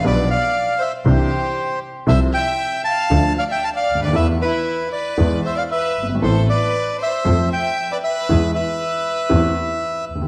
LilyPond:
<<
  \new Staff \with { instrumentName = "Bandoneon" } { \time 4/4 \key a \minor \tempo 4 = 116 d''8 f''4 e''8 c''4. r8 | e''8 g''4 a''4 f''16 g''16 a''16 f''8 d''16 | e''8 b'4 d''4 e''16 f''16 e''8. r16 | c''8 d''4 e''4 g''8. d''16 e''8~ |
e''8 e''2. r8 | }
  \new Staff \with { instrumentName = "Violin section" } { \time 4/4 \key a \minor b'8 d''4 c''8 g'4. r8 | c''8 e''4 f''4 d''16 e''16 f''16 d''8 b'16 | b'8 e'4 b'4 c''16 d''16 b'8. r16 | a'8 b'4 c''4 e''8. b'16 b'8~ |
b'8 b'2. r8 | }
  \new Staff \with { instrumentName = "Grand piano" } { \clef bass \time 4/4 \key a \minor <b,, b, f b d' g'>8 r4. <c, c e c' d' g'>8 r4. | <c, c f c' e' a'>8 r4. <d, d f a d' a'>8 r4 r32 cis,32 d,32 dis,32 | <e, e a b a'>8 r4. <e, e gis b gis'>8 r4 r32 fis,,32 g,,32 gis,,32 | <a,, a, e b c' a'>8 r4. <f, f a c' a'>8 r4. |
<e, e gis b gis'>8 r4. <e, e a c' g'>8 r4 r32 d,32 dis,32 r32 | }
  \new Staff \with { instrumentName = "Double bass" } { \clef bass \time 4/4 \key a \minor b,,8 r4. c,8 r4. | c,8 r4. d,8 r4 d,8 | e,8 r4. e,8 r4 g,,8 | a,,8 r4. f,8 r4. |
e,8 r4. e,8 r4 dis,8 | }
>>